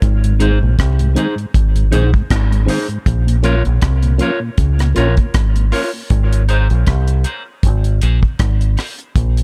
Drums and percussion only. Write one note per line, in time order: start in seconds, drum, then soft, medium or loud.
0.02 kick loud
0.02 closed hi-hat medium
0.24 closed hi-hat medium
0.40 closed hi-hat medium
0.79 kick loud
0.79 cross-stick loud
0.79 closed hi-hat medium
0.99 closed hi-hat soft
1.16 closed hi-hat medium
1.38 closed hi-hat soft
1.54 kick loud
1.54 closed hi-hat medium
1.76 closed hi-hat soft
1.93 closed hi-hat medium
2.14 kick medium
2.30 kick loud
2.30 cross-stick loud
2.30 closed hi-hat medium
2.52 closed hi-hat soft
2.68 open hi-hat medium
2.90 closed hi-hat soft
3.06 kick loud
3.06 closed hi-hat medium
3.28 closed hi-hat medium
3.44 closed hi-hat medium
3.65 closed hi-hat soft
3.82 kick loud
3.82 cross-stick loud
3.82 closed hi-hat medium
4.03 closed hi-hat soft
4.19 closed hi-hat medium
4.58 kick loud
4.58 closed hi-hat medium
4.79 cross-stick medium
4.79 closed hi-hat soft
4.96 closed hi-hat medium
5.17 kick medium
5.17 closed hi-hat soft
5.34 kick loud
5.34 cross-stick loud
5.34 closed hi-hat medium
5.56 closed hi-hat soft
5.72 open hi-hat medium
6.10 kick loud
6.10 closed hi-hat medium
6.33 closed hi-hat medium
6.49 closed hi-hat medium
6.70 closed hi-hat soft
6.87 kick loud
6.87 cross-stick loud
6.87 closed hi-hat medium
7.08 closed hi-hat soft
7.24 closed hi-hat medium
7.63 kick loud
7.63 closed hi-hat medium
7.84 closed hi-hat soft
8.02 closed hi-hat medium
8.23 kick medium
8.39 kick loud
8.39 cross-stick loud
8.39 closed hi-hat medium
8.61 closed hi-hat soft
8.77 cross-stick medium
8.77 open hi-hat medium
8.99 closed hi-hat soft
9.16 kick loud
9.16 closed hi-hat medium
9.37 closed hi-hat medium